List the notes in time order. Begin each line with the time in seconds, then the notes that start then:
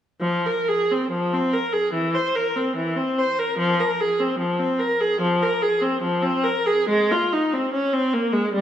0.21 F3
0.46 A#4
0.68 G#4
0.92 C4
1.11 F3
1.33 C4
1.53 A#4
1.73 G#4
1.93 E3
2.14 C5
2.35 A#4
2.56 C4
2.76 E3
2.96 C4
3.18 C5
3.39 A#4
3.59 F3
3.80 A#4
4.00 G#4
4.20 C4
4.39 F3
4.59 C4
4.79 A#4
5.00 G#4
5.21 F3
5.42 A#4
5.62 G#4
5.81 C4
6.02 F3
6.22 C4
6.44 A#4
6.66 G#4
6.89 G#3
7.11 F4
7.33 D#4
7.53 C4
7.73 C#4
7.93 C4
8.14 A#3
8.33 G#3
8.53 G3